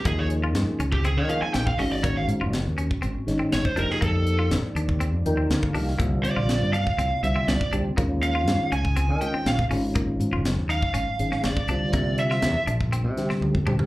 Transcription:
<<
  \new Staff \with { instrumentName = "Lead electric guitar" } { \time 4/4 \key c \phrygian \tempo 4 = 121 aes'16 des''16 r4 r16 g'16 aes'16 des''16 f''16 aes''16 g''16 f''16 ees''16 d''16 | des''16 f''16 r2 r8 des''16 c''16 bes'16 aes'16 | a'4 r2. | r8 d''4 f''4 e''8 d''8 r8 |
r8 f''4 aes''4 g''8 f''8 r8 | r4. f''4. d''4~ | d''8 e''4 r2 r8 | }
  \new Staff \with { instrumentName = "Clean electric guitar" } { \time 4/4 \key c \phrygian bes8 r16 f'8 r16 des'8 c'8 r16 c'8 r16 des'8 | bes8 r16 f'8 r16 des'8 c'8 r16 c'8 r16 d'8 | bes8 r16 f'8 r16 d'8 c'8 r16 c'8 r16 d'8 | bes8 r16 f'8 r16 d'8 c'8 r16 c'8 r16 d'8 |
bes8 r16 f'8 r16 des'8 c'8 r16 c'8 r16 des'8 | bes8 r16 f'8 r16 ees'8 des'8 r16 des'8 r16 d'8 | bes8 r16 f'8 r16 d'8 c'8 r16 c'8 r16 d'8 | }
  \new Staff \with { instrumentName = "Tonewheel organ" } { \time 4/4 \key c \phrygian r1 | r1 | r2 r8 g''8 f''8 f''8 | r1 |
r1 | r1 | r1 | }
  \new Staff \with { instrumentName = "Tonewheel organ" } { \time 4/4 \key c \phrygian <f bes ees' aes'>4. r4 <f bes ees' aes'>8. r16 <ees aes des' ges'>8~ | <ees aes des' ges'>4 r4. <ees aes des' ees'>8. r16 <f bes ees' g'>8~ | <f bes ees' g'>4 r4. <f bes ees' bes'>8. r16 <f bes ees' g'>8 | <d g c' f'>4. r4 <d g c' f'>8. r16 <d g c' g'>8 |
<ees aes des' f'>4. r4 <ees aes des' f'>8. r16 <ees aes des' f'>8~ | <ees aes des' f'>4 r4. <ees aes des' aes'>8. r16 <d g c' f'>8~ | <d g c' f'>4 r4. <d g c' g'>8. r16 <d g c' g'>8 | }
  \new Staff \with { instrumentName = "Analog synth pad" } { \time 4/4 \key c \phrygian <ees bes c' des' f' aes'>2.~ <ees bes c' des' f' aes'>8 <aes des' ges'>8~ | <aes des' ges'>2.~ <aes des' ges'>8 <f bes c' ees' g' d''>8~ | <f bes c' ees' g' d''>1 | <c g a bes f'>1 |
<ees des' aes'>2.~ <ees des' aes'>8 <ges aes des'>8~ | <ges aes des'>2.~ <ges aes des'>8 <c g a bes d' f'>8~ | <c g a bes d' f'>1 | }
  \new Staff \with { instrumentName = "Fingered electric bass" } { \clef bass \time 4/4 \key c \phrygian ees,4 g,16 r16 des,8. ees8 r16 bes,,8 aes,,8~ | aes,,8 aes,16 ges,,8 ees,8 r16 aes,,16 r16 aes,,16 r16 aes,,16 r16 f,,16 r16 | f,4 a,,16 r16 ees,8. f,16 ees,8 d,8 c,8 | c,8 c16 bes,,8 g,8 r16 c,16 r16 c,16 r16 c,16 r16 c,16 r16 |
ees,4 g,16 r16 des,8. ees8 r16 bes,,8 aes,,8~ | aes,,8 aes,16 ges,,8 ees,8 r16 aes,,16 r16 aes,,16 r16 aes,,16 r16 c,16 r16 | c4 e,16 r16 bes,,8. c8 r16 d,4 | }
  \new DrumStaff \with { instrumentName = "Drums" } \drummode { \time 4/4 <hh bd>8 hh8 <hh sn>8 hh16 bd16 hh8 hh8 <hh sn>16 bd16 hho8 | <hh bd>8 hh8 <hh sn>8 hh16 bd16 hh8 <hh sn>8 <hh sn>16 bd16 hh16 sn16 | <hh bd>8 hh8 <hh sn>8 hh16 bd16 hh8 hh8 <hh sn>16 bd16 hho16 sn16 | <hh bd>8 hh8 <hh sn>8 hh16 bd16 hh8 hh8 <hh sn>16 bd16 hh8 |
<hh bd>8 hh8 <hh sn>8 hh16 bd16 hh8 hh8 <hh sn>16 bd16 hho8 | <hh bd>8 hh8 <hh sn>8 hh16 bd16 hh8 hh16 sn16 <hh sn>16 bd16 hh8 | <hh bd>8 hh16 sn16 <hh sn>8 hh16 bd16 hh8 <hh sn>16 sn16 tommh16 bd16 toml16 tomfh16 | }
>>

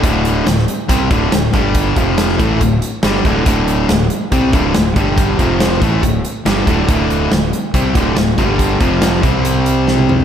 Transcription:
<<
  \new Staff \with { instrumentName = "Distorted electric guitar" } { \clef bass \time 4/4 \key g \major \tempo 4 = 140 <d, a, d>4 <d, a,>8 r8 <c g c'>8 <d, a, d>8 <d, a,>8 <g, d g>8~ | <g, d g>8 <f, c f>4 <a, e a>8 <d, a,>8 r8 <g, d g>8 <d, a, d>8 | <d, a, d>4 <d, a,>8 r8 <c g c'>8 <d, a, d>8 <d, a,>8 <g, d g>8~ | <g, d g>8 <f, c f>4 <a, e a>8 <d, a,>8 r8 <g, d g>8 <d, a, d>8 |
<d, a, d>4 <d, a,>8 r8 <c g c'>8 <d, a, d>8 <d, a,>8 <g, d g>8~ | <g, d g>8 <f, c f>4 <c g c'>2~ <c g c'>8 | }
  \new Staff \with { instrumentName = "Overdriven electric guitar" } { \clef bass \time 4/4 \key g \major <d, a, d>4 <d, a,>8 r8 <c g c'>8 <d, a, d>8 <d, a,>8 <g, d g>8~ | <g, d g>8 <f, c f>4 <a, e a>8 <d, a,>8 r8 <g, d g>8 <d, a, d>8 | <d, a, d>4 <d, a,>8 r8 <c g c'>8 <d, a, d>8 <d, a,>8 <g, d g>8~ | <g, d g>8 <f, c f>4 <a, e a>8 <d, a,>8 r8 <g, d g>8 <d, a, d>8 |
<d, a, d>4 <d, a,>8 r8 <c g c'>8 <d, a, d>8 <d, a,>8 <g, d g>8~ | <g, d g>8 <f, c f>4 <c g c'>2~ <c g c'>8 | }
  \new Staff \with { instrumentName = "Fingered electric bass" } { \clef bass \time 4/4 \key g \major d,,4 d,,8 r8 c,8 d,,8 d,,8 g,,8~ | g,,8 f,,4 a,,8 d,,8 r8 g,,8 d,,8 | d,,4 d,,8 r8 c,8 d,,8 d,,8 g,,8~ | g,,8 f,,4 a,,8 d,,8 r8 g,,8 d,,8 |
d,,4 d,,8 r8 c,8 d,,8 d,,8 g,,8~ | g,,8 f,,4 c,2~ c,8 | }
  \new DrumStaff \with { instrumentName = "Drums" } \drummode { \time 4/4 <hh bd>8 hh8 <hh sn>16 sn16 hh8 <hh bd>8 <hh bd>8 <hh sn>8 <hh bd>8 | <hh bd>8 <hh bd>8 <hh sn>16 sn16 <hh bd>8 <hh bd>8 hh8 <hh sn>8 <hh bd>8 | <hh bd>8 hh8 <hh sn>8 hh8 <hh bd>8 <hh bd>8 <hh sn>8 <hh bd>8 | <hh bd>8 <hh bd>8 <hh sn>8 <hh bd>8 <hh bd>8 hh8 <hh sn>8 <hh bd>8 |
<hh bd>8 hh8 <hh sn>8 hh8 <hh bd>8 <hh bd>8 <hh sn>8 <hh bd>8 | <hh bd>8 <hh bd>8 <hh sn>8 <hh bd>8 hh8 hh8 sn16 tommh16 toml16 tomfh16 | }
>>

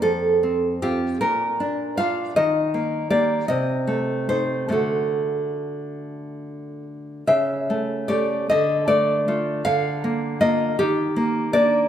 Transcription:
\new Staff \with { instrumentName = "Nylon-string guitar" } { \time 6/8 \key d \phrygian \tempo 4. = 51 << { a'4 g'8 bes'4 f''8 | ees''4 d''8 ees''4 c''8 | a'2~ a'8 r8 | e''4 d''8 ees''8 d''4 |
f''4 ees''8 g'4 d''8 | } \\ { f,8 c'8 <c' f'>8 bes,8 d'8 <d' f'>8 | ees8 bes8 <bes g'>8 c8 a8 <a ees'>8 | <d a fis'>2. | cis8 a8 <a g'>8 d8 a8 <a f'>8 |
d8 bes8 <bes f'>8 ees8 bes8 <bes d'>8 | } >> }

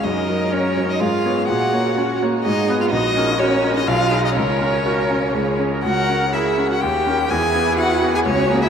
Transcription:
<<
  \new Staff \with { instrumentName = "Violin" } { \time 3/4 \key fis \major \tempo 4 = 124 dis''4 cis''8. dis''16 eis''4 | fis''4. r8 dis''8. eis''16 | dis''4 cis''8. dis''16 eis''8. dis''16 | cis''2~ cis''8 r8 |
\key e \lydian fis''4 e''8. fis''16 g''4 | gis''4 fis''8. gis''16 cis''8. e''16 | }
  \new Staff \with { instrumentName = "Viola" } { \time 3/4 \key fis \major ais'2 gis'4~ | gis'4 fis'4 gis'4 | fis'4 fis'2 | ais'4 ais'4 gis'8. ais'16 |
\key e \lydian ais'4 gis'4 g'4 | e'2 fis'4 | }
  \new Staff \with { instrumentName = "Cello" } { \time 3/4 \key fis \major dis'4 cis'8. dis'16 eis'4 | fis'4. r8 dis'8. eis'16 | dis'4 cis'8. dis'16 eis'8. dis'16 | cis'2~ cis'8 r8 |
\key e \lydian fis'4 e'8. fis'16 g'4 | gis'4 fis'8. gis'16 cis'8. e'16 | }
  \new Staff \with { instrumentName = "Grand piano" } { \time 3/4 \key fis \major fis,8 <fis ais'>8 <cis' ais'>8 <fis ais'>8 gis,8 <b cis''>8 | ais,8 <ais cis''>8 <cis' cis''>8 <ais cis''>8 gis,8 <b b'>8 | ais,,8 <cis' ais'>8 <fis' ais'>8 <cis' ais'>8 b,,8 <dis' gis'>8 | cis,8 <cis' ais'>8 <fis' ais'>8 <cis' ais'>8 cis,8 <cis' gis'>8 |
\key e \lydian cis,8 <cis' ais'>8 <gis' ais'>8 <cis' ais'>8 dis,8 <cis' ais'>8 | e,8 <b gis'>8 <e' gis'>8 <b gis'>8 cis,8 <ais gis'>8 | }
>>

